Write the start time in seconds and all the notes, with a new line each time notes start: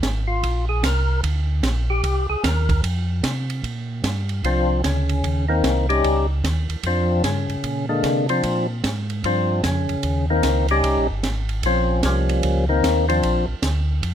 0.03 G#1, kick, snare, hi-hat pedal, ride
0.28 F4
0.43 A#1, kick, ride
0.69 G#4
0.83 C2 A#4, kick, snare, hi-hat pedal, ride
1.23 D2, kick, ride
1.63 A#1, kick, snare, hi-hat pedal, ride
1.90 G4
2.04 C2, kick, ride
2.29 C2 G#4
2.44 D#2 A#4, kick, snare, hi-hat pedal, ride
2.69 kick, ride
2.83 F2, kick, ride
3.23 C3, kick, snare, hi-hat pedal, ride
3.50 ride
3.63 A#2, kick, ride
4.04 G2, kick, snare, hi-hat pedal, ride
4.29 ride
4.44 C2 F3 C4 D4 F4, kick, ride
4.84 D2 C#3 C#4, kick, snare, hi-hat pedal, ride
5.09 ride
5.24 D#2, kick, ride
5.48 D#3 A#3 C4 D#4
5.64 C2, kick, snare, hi-hat pedal, ride
5.89 G3 C#4 D#4 G4, ride
6.04 C#2, kick, ride
6.44 D#2, kick, snare, hi-hat pedal, ride
6.69 D#2, ride
6.83 F2 F3 C4 D4 F4, kick, ride
7.24 G2 C#3 C#4, kick, snare, hi-hat pedal, ride
7.49 G2, ride
7.64 A#2, kick, ride
7.89 D3 G#3 A#3 D4
8.03 C3, kick, snare, hi-hat pedal, ride
8.29 F3 C4 D4 F4, ride
8.43 A#2, kick, ride
8.84 G#2, kick, snare, hi-hat pedal, ride
9.10 ride
9.24 G2 F3 C4 D4 F4, kick, ride
9.63 F2 C#3 C#4, kick, snare, hi-hat pedal, ride
9.89 F2, ride
10.03 D#2, kick, ride
10.30 D#3 A#3 C4 D#4
10.43 C#2, kick, snare, hi-hat pedal, ride
10.68 G3 C#4 D#4 G4, ride
10.84 C2, kick, ride
10.97 A#1
11.11 G1
11.23 G#1, kick, snare, hi-hat pedal, ride
11.49 ride
11.63 A#1 F3 C4 C#4 F4, kick, ride
12.03 C2 F3 G3 A#3 C#4, kick, snare, hi-hat pedal, ride
12.29 ride
12.43 C#2, kick, ride
12.69 D#3 A#3 C4 D#4
12.83 D#2, kick, snare, hi-hat pedal, ride
13.09 F3 C4 D4 F4, ride
13.23 A#1, kick, ride
13.47 A#1
13.62 D2, kick, snare, hi-hat pedal, ride
14.03 F2, kick, ride